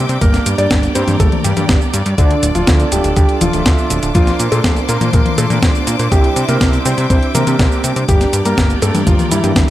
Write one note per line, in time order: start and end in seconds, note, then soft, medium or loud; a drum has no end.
0.00 0.19 G3 medium
0.00 0.12 A#3 medium
0.00 0.19 C4 medium
0.00 0.19 D4 medium
0.00 0.19 G4 medium
0.00 0.12 A#4 loud
0.00 0.19 C5 medium
0.00 0.19 E5 medium
0.00 2.14 G5 medium
0.00 2.14 D6 medium
0.09 0.18 C3 loud
0.09 closed hi-hat medium
0.09 cabasa soft
0.21 0.39 G1 loud
0.21 0.92 G3 medium
0.21 0.48 A#3 medium
0.21 0.92 A#3 medium
0.21 0.92 D4 medium
0.21 0.92 G4 loud
0.21 0.48 A#4 loud
0.21 2.16 A#4 medium
0.21 4.11 D5 medium
0.21 kick loud
0.21 closed hi-hat medium
0.21 cabasa soft
0.34 snare soft
0.34 closed hi-hat soft
0.34 cabasa soft
0.46 0.55 G2 medium
0.46 closed hi-hat medium
0.46 cabasa medium
0.58 0.67 G2 medium
0.58 0.85 D4 medium
0.58 0.85 D5 loud
0.58 closed hi-hat medium
0.58 cabasa soft
0.71 0.88 G1 medium
0.71 kick loud
0.71 snare loud
0.71 closed hi-hat medium
0.71 cabasa soft
0.83 closed hi-hat soft
0.83 cabasa soft
0.95 1.04 G2 loud
0.95 1.54 A#3 medium
0.95 1.13 C4 medium
0.95 1.54 D4 medium
0.95 1.13 C5 medium
0.95 closed hi-hat medium
0.95 cabasa medium
1.08 1.16 G2 loud
1.08 closed hi-hat medium
1.08 high tom medium
1.08 cabasa soft
1.20 1.28 G1 medium
1.20 1.38 A3 medium
1.20 1.38 A4 medium
1.20 kick loud
1.20 closed hi-hat medium
1.20 cabasa soft
1.32 closed hi-hat soft
1.32 high tom medium
1.44 1.53 G2 loud
1.44 2.08 G3 medium
1.44 2.08 G4 loud
1.44 closed hi-hat medium
1.44 cabasa medium
1.57 1.65 G2 loud
1.57 1.80 G3 medium
1.57 1.80 A#3 medium
1.57 1.80 D4 medium
1.57 1.80 G4 loud
1.57 closed hi-hat medium
1.57 high tom medium
1.57 cabasa soft
1.69 1.78 G1 loud
1.69 kick loud
1.69 snare loud
1.69 closed hi-hat medium
1.69 cabasa soft
1.81 cabasa soft
1.94 2.02 G2 medium
1.94 closed hi-hat medium
1.94 cabasa medium
2.06 2.15 G2 medium
2.06 closed hi-hat medium
2.06 cabasa soft
2.18 2.35 D2 loud
2.18 2.45 D3 medium
2.18 2.89 D4 medium
2.18 2.45 D4 loud
2.18 2.89 F4 medium
2.18 6.08 F4 medium
2.18 2.89 A4 medium
2.18 4.13 A4 medium
2.18 2.89 D5 loud
2.18 9.70 D6 medium
2.18 kick loud
2.18 closed hi-hat medium
2.18 cabasa soft
2.31 closed hi-hat soft
2.43 2.52 D1 medium
2.43 closed hi-hat medium
2.43 cabasa medium
2.55 2.64 D1 medium
2.55 2.82 F3 medium
2.55 2.82 F4 medium
2.55 closed hi-hat medium
2.55 cabasa soft
2.67 2.85 D2 medium
2.67 kick loud
2.67 snare loud
2.67 closed hi-hat medium
2.67 cabasa soft
2.80 closed hi-hat soft
2.80 cabasa soft
2.92 3.01 D1 loud
2.92 3.10 G3 medium
2.92 3.51 D4 medium
2.92 3.51 F4 medium
2.92 3.10 G4 medium
2.92 3.51 A4 medium
2.92 3.51 D5 medium
2.92 closed hi-hat medium
2.92 cabasa medium
3.04 3.13 D1 loud
3.04 closed hi-hat medium
3.04 cabasa soft
3.16 3.25 D2 loud
3.16 3.34 G3 medium
3.16 3.34 G4 medium
3.16 kick loud
3.16 closed hi-hat medium
3.16 cabasa soft
3.29 closed hi-hat soft
3.41 3.50 D1 medium
3.41 4.05 F3 medium
3.41 4.05 F4 loud
3.41 closed hi-hat medium
3.41 high tom medium
3.41 cabasa medium
3.53 3.62 D1 medium
3.53 3.63 D4 loud
3.53 3.63 F4 medium
3.53 3.63 A4 medium
3.53 3.63 E5 loud
3.53 closed hi-hat medium
3.53 cabasa soft
3.66 3.74 D2 loud
3.66 4.12 D4 medium
3.66 4.12 F4 medium
3.66 4.12 A4 medium
3.66 4.12 E5 loud
3.66 kick loud
3.66 snare loud
3.66 closed hi-hat medium
3.66 cabasa soft
3.78 cabasa soft
3.90 3.99 D1 medium
3.90 closed hi-hat medium
3.90 cabasa medium
4.03 4.11 D1 loud
4.03 closed hi-hat medium
4.03 cabasa soft
4.15 4.32 A#1 loud
4.15 4.42 F3 medium
4.15 4.86 D4 medium
4.15 4.86 F4 medium
4.15 4.42 F4 loud
4.15 4.86 A#4 medium
4.15 4.86 C5 loud
4.15 8.04 C5 medium
4.15 6.10 C6 medium
4.15 kick loud
4.15 closed hi-hat medium
4.15 cabasa soft
4.27 snare soft
4.27 closed hi-hat soft
4.27 cabasa soft
4.40 4.48 A#2 medium
4.40 closed hi-hat medium
4.40 cabasa medium
4.52 4.61 A#2 medium
4.52 4.78 A3 medium
4.52 4.78 A4 medium
4.52 closed hi-hat soft
4.52 cabasa soft
4.64 4.81 A#1 medium
4.64 kick loud
4.64 snare loud
4.64 closed hi-hat medium
4.64 cabasa soft
4.76 closed hi-hat soft
4.76 cabasa soft
4.89 4.97 A#2 loud
4.89 5.06 A#3 medium
4.89 5.48 D4 medium
4.89 5.48 F4 medium
4.89 5.48 A#4 medium
4.89 5.06 A#4 medium
4.89 5.48 C5 medium
4.89 closed hi-hat medium
4.89 cabasa medium
5.01 5.10 A#2 loud
5.01 closed hi-hat medium
5.01 high tom medium
5.01 cabasa soft
5.13 5.22 A#1 loud
5.13 5.31 A#3 medium
5.13 5.31 A#4 medium
5.13 kick loud
5.13 closed hi-hat medium
5.13 cabasa soft
5.26 closed hi-hat soft
5.26 high tom medium
5.38 5.47 A#2 loud
5.38 6.02 A3 medium
5.38 6.02 A4 medium
5.38 closed hi-hat medium
5.38 cabasa medium
5.50 5.59 A#2 loud
5.50 5.60 D4 loud
5.50 5.60 F4 medium
5.50 5.60 A#4 medium
5.50 5.60 D5 loud
5.50 closed hi-hat medium
5.50 high tom medium
5.50 cabasa soft
5.62 5.71 A#1 loud
5.62 6.09 D4 medium
5.62 6.09 F4 medium
5.62 6.09 C5 medium
5.62 6.09 D5 medium
5.62 kick loud
5.62 snare loud
5.62 closed hi-hat medium
5.62 cabasa soft
5.75 cabasa soft
5.87 5.96 A#2 medium
5.87 closed hi-hat medium
5.87 cabasa medium
5.99 6.08 A#2 loud
5.99 closed hi-hat medium
5.99 cabasa soft
6.12 6.29 C2 loud
6.12 6.38 G3 medium
6.12 6.83 G3 medium
6.12 6.83 C4 medium
6.12 6.83 D4 medium
6.12 6.83 E4 loud
6.12 6.38 G4 loud
6.12 8.06 E5 medium
6.12 8.06 G5 medium
6.12 kick loud
6.12 closed hi-hat medium
6.12 cabasa soft
6.24 closed hi-hat soft
6.36 6.45 C3 medium
6.36 closed hi-hat medium
6.36 cabasa medium
6.49 6.57 C3 medium
6.49 6.75 A#3 medium
6.49 6.75 A#4 loud
6.49 closed hi-hat medium
6.49 cabasa soft
6.61 6.78 C2 medium
6.61 kick loud
6.61 snare loud
6.61 closed hi-hat medium
6.61 cabasa soft
6.73 closed hi-hat soft
6.73 cabasa soft
6.85 6.94 C3 loud
6.85 7.44 G3 medium
6.85 7.44 C4 medium
6.85 7.03 C4 medium
6.85 7.45 D4 medium
6.85 7.45 E4 medium
6.85 7.03 C5 medium
6.85 closed hi-hat medium
6.85 cabasa medium
6.98 7.06 C3 loud
6.98 closed hi-hat soft
6.98 cabasa soft
7.10 7.19 C2 loud
7.10 7.28 C4 medium
7.10 7.28 C5 medium
7.10 kick loud
7.10 closed hi-hat medium
7.10 cabasa soft
7.23 closed hi-hat soft
7.35 7.43 C3 medium
7.35 7.99 A#3 medium
7.35 7.99 A#4 loud
7.35 closed hi-hat medium
7.35 high tom medium
7.35 cabasa medium
7.47 7.56 C3 medium
7.47 7.56 G3 loud
7.47 7.56 C4 medium
7.47 7.56 D4 medium
7.47 7.56 G4 loud
7.47 closed hi-hat medium
7.47 cabasa soft
7.59 7.68 C2 loud
7.59 8.05 G3 medium
7.59 8.05 C4 medium
7.59 8.05 D4 medium
7.59 8.05 G4 medium
7.59 kick loud
7.59 snare loud
7.59 closed hi-hat medium
7.59 cabasa soft
7.72 cabasa soft
7.84 7.92 C3 medium
7.84 closed hi-hat medium
7.84 cabasa medium
7.96 8.05 C3 loud
7.96 closed hi-hat medium
7.96 cabasa soft
8.08 8.26 G1 loud
8.08 8.79 G3 medium
8.08 8.35 G3 medium
8.08 8.79 A#3 medium
8.08 8.79 D4 medium
8.08 8.79 G4 medium
8.08 8.35 G4 loud
8.08 9.70 A#4 medium
8.08 9.70 D5 medium
8.08 9.70 G5 medium
8.08 kick loud
8.08 closed hi-hat medium
8.08 cabasa soft
8.21 snare soft
8.21 closed hi-hat soft
8.21 cabasa soft
8.33 8.42 G2 medium
8.33 closed hi-hat medium
8.33 cabasa medium
8.45 8.54 G2 medium
8.45 8.72 A#3 medium
8.45 8.72 A#4 loud
8.45 closed hi-hat medium
8.45 cabasa soft
8.58 8.75 G1 medium
8.58 kick loud
8.58 snare loud
8.58 closed hi-hat medium
8.58 cabasa soft
8.70 closed hi-hat soft
8.70 cabasa soft
8.82 8.91 G2 loud
8.82 9.41 G3 medium
8.82 9.00 A3 medium
8.82 9.41 A#3 medium
8.82 9.41 D4 medium
8.82 9.41 G4 medium
8.82 9.00 A4 medium
8.82 closed hi-hat medium
8.82 cabasa medium
8.94 9.03 G2 loud
8.94 closed hi-hat medium
8.94 high tom medium
8.94 cabasa soft
9.07 9.15 G1 medium
9.07 9.24 F3 medium
9.07 9.24 F4 medium
9.07 kick loud
9.07 closed hi-hat medium
9.07 cabasa soft
9.19 closed hi-hat soft
9.19 high tom medium
9.19 cabasa soft
9.31 9.40 G2 loud
9.31 9.70 E3 medium
9.31 9.70 E4 loud
9.31 closed hi-hat medium
9.31 cabasa medium
9.44 9.52 G2 loud
9.44 9.67 G3 loud
9.44 9.67 A#3 medium
9.44 9.67 D4 medium
9.44 9.67 G4 loud
9.44 closed hi-hat medium
9.44 high tom medium
9.44 cabasa soft
9.56 9.65 G1 medium
9.56 kick loud
9.56 snare loud
9.56 closed hi-hat medium
9.56 cabasa soft